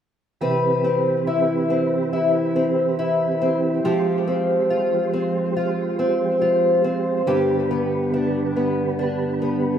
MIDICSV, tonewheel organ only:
0, 0, Header, 1, 2, 480
1, 0, Start_track
1, 0, Key_signature, 0, "major"
1, 0, Tempo, 857143
1, 230, Time_signature, 4, 2, 24, 8
1, 5480, End_track
2, 0, Start_track
2, 0, Title_t, "Tonewheel organ"
2, 0, Program_c, 0, 16
2, 228, Note_on_c, 0, 71, 58
2, 229, Note_on_c, 0, 67, 48
2, 230, Note_on_c, 0, 52, 51
2, 231, Note_on_c, 0, 60, 52
2, 2130, Note_off_c, 0, 71, 0
2, 2131, Note_off_c, 0, 52, 0
2, 2132, Note_off_c, 0, 60, 0
2, 2144, Note_on_c, 0, 53, 51
2, 2145, Note_on_c, 0, 72, 57
2, 2146, Note_on_c, 0, 56, 47
2, 4047, Note_off_c, 0, 67, 0
2, 4048, Note_off_c, 0, 53, 0
2, 4048, Note_off_c, 0, 72, 0
2, 4049, Note_off_c, 0, 56, 0
2, 4067, Note_on_c, 0, 50, 50
2, 4068, Note_on_c, 0, 59, 45
2, 4068, Note_on_c, 0, 71, 65
2, 4069, Note_on_c, 0, 67, 49
2, 5480, Note_off_c, 0, 50, 0
2, 5480, Note_off_c, 0, 59, 0
2, 5480, Note_off_c, 0, 67, 0
2, 5480, Note_off_c, 0, 71, 0
2, 5480, End_track
0, 0, End_of_file